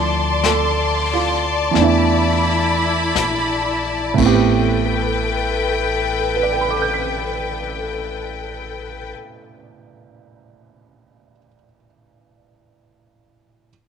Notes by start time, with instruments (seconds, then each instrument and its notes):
Already playing: upright bass D2, grand piano F3 A3 C4 D4 E4, string section D5 A5 C6
0.44 grand piano A4, brush sweep, snare, hi-hat pedal
1.14 grand piano F4
1.71 grand piano E3 A3, string section E4 B5
1.75 upright bass E2, grand piano B3, brush sweep, snare
1.79 grand piano D4 E4
3.16 upright bass A#1, brush sweep, snare, hi-hat pedal
4.14 grand piano A2 A3
4.18 upright bass A1, grand piano B3, string section A4 B4 G5, kick, crash
4.24 grand piano C4 G4
6.36 grand piano B4
6.43 grand piano D5
6.53 grand piano G5
6.61 grand piano B5
6.71 grand piano D6
6.82 grand piano G6
6.94 grand piano B6